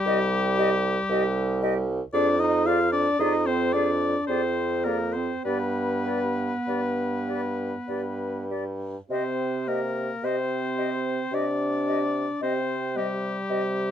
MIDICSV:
0, 0, Header, 1, 6, 480
1, 0, Start_track
1, 0, Key_signature, -3, "minor"
1, 0, Tempo, 1039861
1, 984, Tempo, 1077199
1, 985, Time_signature, 3, 2, 24, 8
1, 1944, Tempo, 1160542
1, 2424, Tempo, 1214575
1, 3864, Tempo, 1136364
1, 4344, Tempo, 1083032
1, 5976, End_track
2, 0, Start_track
2, 0, Title_t, "Flute"
2, 0, Program_c, 0, 73
2, 29, Note_on_c, 0, 75, 68
2, 83, Note_off_c, 0, 75, 0
2, 267, Note_on_c, 0, 75, 69
2, 321, Note_off_c, 0, 75, 0
2, 510, Note_on_c, 0, 75, 63
2, 563, Note_off_c, 0, 75, 0
2, 746, Note_on_c, 0, 75, 69
2, 800, Note_off_c, 0, 75, 0
2, 987, Note_on_c, 0, 74, 66
2, 1039, Note_off_c, 0, 74, 0
2, 1222, Note_on_c, 0, 74, 60
2, 1275, Note_off_c, 0, 74, 0
2, 1460, Note_on_c, 0, 74, 64
2, 1514, Note_off_c, 0, 74, 0
2, 1697, Note_on_c, 0, 74, 58
2, 1753, Note_off_c, 0, 74, 0
2, 1942, Note_on_c, 0, 74, 49
2, 1995, Note_off_c, 0, 74, 0
2, 2172, Note_on_c, 0, 74, 44
2, 2228, Note_off_c, 0, 74, 0
2, 2421, Note_on_c, 0, 74, 44
2, 2475, Note_off_c, 0, 74, 0
2, 2662, Note_on_c, 0, 74, 41
2, 2717, Note_off_c, 0, 74, 0
2, 2906, Note_on_c, 0, 74, 41
2, 2960, Note_off_c, 0, 74, 0
2, 3144, Note_on_c, 0, 74, 40
2, 3198, Note_off_c, 0, 74, 0
2, 3382, Note_on_c, 0, 74, 38
2, 3437, Note_off_c, 0, 74, 0
2, 3632, Note_on_c, 0, 74, 38
2, 3685, Note_off_c, 0, 74, 0
2, 3866, Note_on_c, 0, 75, 44
2, 3921, Note_off_c, 0, 75, 0
2, 4109, Note_on_c, 0, 75, 41
2, 4162, Note_off_c, 0, 75, 0
2, 4346, Note_on_c, 0, 75, 42
2, 4401, Note_off_c, 0, 75, 0
2, 4586, Note_on_c, 0, 75, 42
2, 4640, Note_off_c, 0, 75, 0
2, 4830, Note_on_c, 0, 75, 43
2, 4884, Note_off_c, 0, 75, 0
2, 5070, Note_on_c, 0, 75, 43
2, 5125, Note_off_c, 0, 75, 0
2, 5309, Note_on_c, 0, 75, 44
2, 5363, Note_off_c, 0, 75, 0
2, 5551, Note_on_c, 0, 75, 42
2, 5604, Note_off_c, 0, 75, 0
2, 5791, Note_on_c, 0, 75, 51
2, 5844, Note_off_c, 0, 75, 0
2, 5976, End_track
3, 0, Start_track
3, 0, Title_t, "Oboe"
3, 0, Program_c, 1, 68
3, 0, Note_on_c, 1, 67, 88
3, 866, Note_off_c, 1, 67, 0
3, 985, Note_on_c, 1, 74, 87
3, 1104, Note_on_c, 1, 75, 80
3, 1110, Note_off_c, 1, 74, 0
3, 1223, Note_on_c, 1, 77, 86
3, 1230, Note_off_c, 1, 75, 0
3, 1333, Note_off_c, 1, 77, 0
3, 1336, Note_on_c, 1, 74, 89
3, 1457, Note_on_c, 1, 75, 82
3, 1464, Note_off_c, 1, 74, 0
3, 1577, Note_on_c, 1, 72, 77
3, 1584, Note_off_c, 1, 75, 0
3, 1695, Note_on_c, 1, 74, 83
3, 1702, Note_off_c, 1, 72, 0
3, 1934, Note_off_c, 1, 74, 0
3, 1937, Note_on_c, 1, 72, 67
3, 2176, Note_on_c, 1, 70, 57
3, 2182, Note_off_c, 1, 72, 0
3, 2295, Note_on_c, 1, 72, 56
3, 2301, Note_off_c, 1, 70, 0
3, 2422, Note_off_c, 1, 72, 0
3, 2425, Note_on_c, 1, 71, 54
3, 3612, Note_off_c, 1, 71, 0
3, 3875, Note_on_c, 1, 72, 53
3, 4115, Note_on_c, 1, 70, 55
3, 4121, Note_off_c, 1, 72, 0
3, 4355, Note_on_c, 1, 72, 60
3, 4362, Note_off_c, 1, 70, 0
3, 4839, Note_on_c, 1, 74, 64
3, 4846, Note_off_c, 1, 72, 0
3, 5315, Note_off_c, 1, 74, 0
3, 5318, Note_on_c, 1, 72, 60
3, 5560, Note_on_c, 1, 67, 63
3, 5566, Note_off_c, 1, 72, 0
3, 5976, Note_off_c, 1, 67, 0
3, 5976, End_track
4, 0, Start_track
4, 0, Title_t, "Clarinet"
4, 0, Program_c, 2, 71
4, 26, Note_on_c, 2, 67, 68
4, 99, Note_off_c, 2, 67, 0
4, 268, Note_on_c, 2, 67, 64
4, 342, Note_off_c, 2, 67, 0
4, 508, Note_on_c, 2, 67, 69
4, 582, Note_off_c, 2, 67, 0
4, 748, Note_on_c, 2, 67, 68
4, 822, Note_off_c, 2, 67, 0
4, 986, Note_on_c, 2, 68, 62
4, 1057, Note_off_c, 2, 68, 0
4, 1214, Note_on_c, 2, 68, 58
4, 1285, Note_off_c, 2, 68, 0
4, 1460, Note_on_c, 2, 68, 67
4, 1531, Note_off_c, 2, 68, 0
4, 1702, Note_on_c, 2, 68, 62
4, 1773, Note_off_c, 2, 68, 0
4, 1944, Note_on_c, 2, 68, 53
4, 2010, Note_off_c, 2, 68, 0
4, 2177, Note_on_c, 2, 68, 46
4, 2243, Note_off_c, 2, 68, 0
4, 2427, Note_on_c, 2, 67, 50
4, 2490, Note_off_c, 2, 67, 0
4, 2667, Note_on_c, 2, 67, 42
4, 2730, Note_off_c, 2, 67, 0
4, 2911, Note_on_c, 2, 67, 39
4, 2974, Note_off_c, 2, 67, 0
4, 3155, Note_on_c, 2, 67, 40
4, 3219, Note_off_c, 2, 67, 0
4, 3389, Note_on_c, 2, 67, 40
4, 3452, Note_off_c, 2, 67, 0
4, 3632, Note_on_c, 2, 67, 37
4, 3696, Note_off_c, 2, 67, 0
4, 3868, Note_on_c, 2, 67, 45
4, 3935, Note_off_c, 2, 67, 0
4, 4110, Note_on_c, 2, 67, 40
4, 4178, Note_off_c, 2, 67, 0
4, 4346, Note_on_c, 2, 67, 45
4, 4417, Note_off_c, 2, 67, 0
4, 4589, Note_on_c, 2, 67, 44
4, 4660, Note_off_c, 2, 67, 0
4, 4835, Note_on_c, 2, 67, 44
4, 4906, Note_off_c, 2, 67, 0
4, 5075, Note_on_c, 2, 67, 41
4, 5146, Note_off_c, 2, 67, 0
4, 5315, Note_on_c, 2, 67, 40
4, 5386, Note_off_c, 2, 67, 0
4, 5556, Note_on_c, 2, 67, 45
4, 5627, Note_off_c, 2, 67, 0
4, 5795, Note_on_c, 2, 67, 45
4, 5866, Note_off_c, 2, 67, 0
4, 5976, End_track
5, 0, Start_track
5, 0, Title_t, "French horn"
5, 0, Program_c, 3, 60
5, 0, Note_on_c, 3, 55, 93
5, 845, Note_off_c, 3, 55, 0
5, 987, Note_on_c, 3, 62, 89
5, 1094, Note_off_c, 3, 62, 0
5, 1101, Note_on_c, 3, 63, 99
5, 1218, Note_on_c, 3, 65, 94
5, 1224, Note_off_c, 3, 63, 0
5, 1335, Note_off_c, 3, 65, 0
5, 1338, Note_on_c, 3, 62, 93
5, 1455, Note_off_c, 3, 62, 0
5, 1460, Note_on_c, 3, 63, 93
5, 1579, Note_on_c, 3, 60, 81
5, 1586, Note_off_c, 3, 63, 0
5, 1699, Note_on_c, 3, 62, 87
5, 1706, Note_off_c, 3, 60, 0
5, 1945, Note_on_c, 3, 60, 73
5, 1951, Note_off_c, 3, 62, 0
5, 2182, Note_on_c, 3, 58, 77
5, 2188, Note_off_c, 3, 60, 0
5, 2303, Note_on_c, 3, 60, 66
5, 2309, Note_off_c, 3, 58, 0
5, 2424, Note_off_c, 3, 60, 0
5, 2427, Note_on_c, 3, 59, 65
5, 3613, Note_off_c, 3, 59, 0
5, 3867, Note_on_c, 3, 60, 65
5, 4111, Note_on_c, 3, 58, 60
5, 4117, Note_off_c, 3, 60, 0
5, 4351, Note_on_c, 3, 60, 74
5, 4357, Note_off_c, 3, 58, 0
5, 4834, Note_on_c, 3, 62, 79
5, 4841, Note_off_c, 3, 60, 0
5, 5315, Note_off_c, 3, 62, 0
5, 5320, Note_on_c, 3, 60, 68
5, 5561, Note_on_c, 3, 55, 69
5, 5568, Note_off_c, 3, 60, 0
5, 5976, Note_off_c, 3, 55, 0
5, 5976, End_track
6, 0, Start_track
6, 0, Title_t, "Bassoon"
6, 0, Program_c, 4, 70
6, 26, Note_on_c, 4, 36, 71
6, 450, Note_off_c, 4, 36, 0
6, 505, Note_on_c, 4, 36, 84
6, 927, Note_off_c, 4, 36, 0
6, 986, Note_on_c, 4, 41, 88
6, 1401, Note_off_c, 4, 41, 0
6, 1456, Note_on_c, 4, 41, 72
6, 1886, Note_off_c, 4, 41, 0
6, 1949, Note_on_c, 4, 41, 62
6, 2368, Note_off_c, 4, 41, 0
6, 2428, Note_on_c, 4, 43, 61
6, 2852, Note_off_c, 4, 43, 0
6, 2911, Note_on_c, 4, 43, 48
6, 3332, Note_off_c, 4, 43, 0
6, 3392, Note_on_c, 4, 43, 43
6, 3813, Note_off_c, 4, 43, 0
6, 3870, Note_on_c, 4, 48, 59
6, 4293, Note_off_c, 4, 48, 0
6, 4348, Note_on_c, 4, 48, 55
6, 4774, Note_off_c, 4, 48, 0
6, 4828, Note_on_c, 4, 48, 50
6, 5255, Note_off_c, 4, 48, 0
6, 5316, Note_on_c, 4, 48, 60
6, 5737, Note_off_c, 4, 48, 0
6, 5794, Note_on_c, 4, 48, 58
6, 5976, Note_off_c, 4, 48, 0
6, 5976, End_track
0, 0, End_of_file